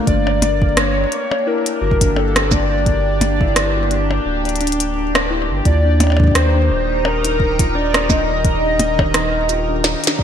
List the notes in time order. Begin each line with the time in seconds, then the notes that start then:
Already playing: A#3 A#4
0.07 G1 D4 D5, kick, closed hi-hat
0.27 percussion blips
0.42 D4, closed hi-hat, percussion blips
0.62 G4 D5, kick
0.77 D4 C#5, cross-stick, closed hi-hat
0.92 D4
1.12 D4, closed hi-hat
1.31 percussion blips
1.47 E4 A#4
1.66 closed hi-hat
1.82 G1 F#4
1.91 kick
2.01 D4, kick, closed hi-hat
2.16 A4, percussion blips
2.36 D4, cross-stick, closed hi-hat
2.51 D5, kick, percussion blips, shaker
2.71 D4
2.86 kick, closed hi-hat
3.06 D4
3.21 closed hi-hat, percussion blips
3.41 E4, kick
3.56 cross-stick, closed hi-hat
3.76 F#4
3.91 D4, closed hi-hat
4.11 percussion blips
4.26 D1 D4
4.45 D5, closed hi-hat
4.49 closed hi-hat
4.56 closed hi-hat
4.61 D4, closed hi-hat
4.67 closed hi-hat
4.72 closed hi-hat
4.80 closed hi-hat
4.96 D4
5.15 cross-stick, closed hi-hat, percussion blips
5.31 E4
5.50 G1
5.65 D#2 D#3 F4 D5, kick, closed hi-hat
5.85 D4
6.00 closed hi-hat, percussion blips
6.04 percussion blips
6.07 percussion blips
6.10 percussion blips
6.12 percussion blips
6.17 D4, kick, percussion blips
6.22 D#4, kick
6.28 kick
6.31 D#2 C5, kick, cross-stick, closed hi-hat
6.35 D5 A#5
6.55 D4
6.70 D#1
6.84 A#4
6.90 D4
7.05 A#4, percussion blips
7.25 D#4, closed hi-hat
7.40 kick
7.59 F4, kick, closed hi-hat
7.75 D4 D5
7.94 cross-stick, closed hi-hat, percussion blips
8.09 D4 D#5, kick, percussion blips, shaker
8.29 D5
8.45 D4, kick, closed hi-hat
8.80 D4, closed hi-hat, percussion blips
8.99 kick, percussion blips
9.14 D#4, cross-stick, closed hi-hat
9.49 F4, closed hi-hat, shaker
9.69 D4
9.84 snare, percussion blips
10.04 D4, snare, closed hi-hat
10.19 D5, kick